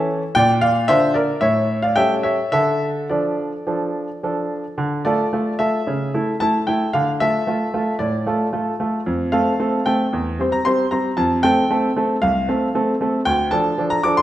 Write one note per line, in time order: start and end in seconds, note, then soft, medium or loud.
0.00 0.21 E3 medium
0.00 0.22 C#4 medium
0.00 0.22 A4 medium
0.35 0.87 A#2 medium
0.35 0.61 D5 medium
0.35 0.51 G5 loud
0.61 0.87 D5 medium
0.61 0.85 F5 loud
0.88 1.27 D3 soft
0.88 1.27 D4 medium
0.88 1.27 F4 medium
0.88 1.13 C5 medium
0.88 1.15 E5 loud
1.14 1.40 A#4 medium
1.14 1.39 D5 medium
1.41 1.94 A2 medium
1.41 1.79 C#5 medium
1.41 1.78 E5 medium
1.82 1.96 D5 medium
1.82 1.96 F5 medium
1.96 2.37 G3 medium
1.96 2.37 C#4 medium
1.96 2.37 A4 medium
1.96 2.22 E5 medium
1.96 2.12 G5 medium
2.23 2.51 C#5 soft
2.23 2.51 E5 medium
2.52 3.09 D3 medium
2.52 3.07 A4 medium
2.52 2.87 E5 medium
3.10 3.51 F3 soft
3.10 3.52 D4 soft
3.10 3.66 A4 soft
3.10 4.50 D5 medium
3.67 4.07 F3 soft
3.67 4.07 D4 soft
3.67 4.08 A4 soft
4.23 4.63 F3 soft
4.23 4.63 D4 soft
4.23 4.63 A4 soft
4.78 5.04 D3 medium
5.05 5.25 A3 medium
5.05 5.25 F4 medium
5.05 5.26 A4 medium
5.05 5.55 D5 medium
5.33 5.52 A3 soft
5.33 5.52 F4 soft
5.33 5.53 A4 soft
5.59 5.79 A3 soft
5.59 5.79 F4 soft
5.59 5.79 A4 soft
5.59 6.41 E5 medium
5.87 6.13 C#3 medium
6.14 6.34 A3 soft
6.14 6.34 E4 medium
6.14 6.34 A4 soft
6.40 6.61 A3 soft
6.40 6.61 E4 soft
6.40 6.61 A4 medium
6.40 6.57 A5 medium
6.67 6.87 A3 soft
6.67 6.87 E4 soft
6.67 6.88 A4 soft
6.67 6.94 G5 medium
6.93 7.20 D3 medium
6.93 7.10 F5 medium
7.20 7.40 A3 soft
7.20 7.40 F4 medium
7.20 7.41 A4 medium
7.20 7.96 E5 medium
7.47 7.66 A3 soft
7.47 7.67 F4 soft
7.47 7.67 A4 soft
7.74 7.93 A3 soft
7.74 7.93 F4 soft
7.74 7.93 A4 soft
7.99 8.26 A2 medium
7.99 8.47 D5 medium
8.26 8.46 A3 soft
8.26 8.46 F4 medium
8.26 8.46 A4 soft
8.53 8.72 A3 soft
8.53 8.72 F4 soft
8.53 8.73 A4 medium
8.80 8.99 A3 soft
8.80 8.99 F4 soft
8.80 8.99 A4 soft
9.06 9.32 F2 medium
9.32 9.52 A3 soft
9.32 9.52 C4 medium
9.32 9.52 A4 medium
9.32 9.86 F5 medium
9.59 9.79 A3 soft
9.59 9.79 C4 soft
9.59 9.79 A4 medium
9.86 10.05 A3 medium
9.86 10.06 C4 soft
9.86 10.06 A4 soft
9.86 10.25 G5 medium
10.13 10.38 E2 medium
10.40 10.58 G3 soft
10.40 10.58 C4 soft
10.40 10.59 C5 medium
10.52 10.65 A#5 medium
10.65 10.84 G3 soft
10.65 10.84 C4 soft
10.65 10.85 C5 medium
10.65 10.88 C6 medium
10.91 11.10 G3 soft
10.91 11.10 C4 soft
10.91 11.11 C5 soft
10.91 11.14 A#5 medium
11.17 11.43 F2 medium
11.17 11.43 A5 medium
11.43 11.62 A3 soft
11.43 11.63 C4 medium
11.43 11.63 A4 medium
11.43 11.90 G5 loud
11.70 11.89 A3 medium
11.70 11.89 C4 medium
11.70 11.89 A4 medium
11.96 12.15 A3 medium
11.96 12.15 C4 soft
11.96 12.16 A4 medium
12.22 12.48 C2 medium
12.22 12.69 F5 medium
12.48 12.67 A3 soft
12.48 12.67 C4 soft
12.48 12.68 A4 medium
12.75 12.93 A3 soft
12.75 12.94 C4 medium
12.75 12.94 A4 medium
13.01 13.19 A3 soft
13.01 13.19 C4 soft
13.01 13.20 A4 medium
13.25 13.51 D2 medium
13.25 13.51 G5 loud
13.51 13.70 F3 medium
13.51 13.71 D4 medium
13.51 13.71 A4 medium
13.51 13.90 A5 medium
13.78 13.97 F3 medium
13.78 13.97 D4 medium
13.78 13.97 A4 medium
13.90 14.04 A#5 medium
14.03 14.22 F3 medium
14.03 14.22 D4 medium
14.03 14.22 A4 medium
14.03 14.17 D6 medium
14.17 14.22 C6 medium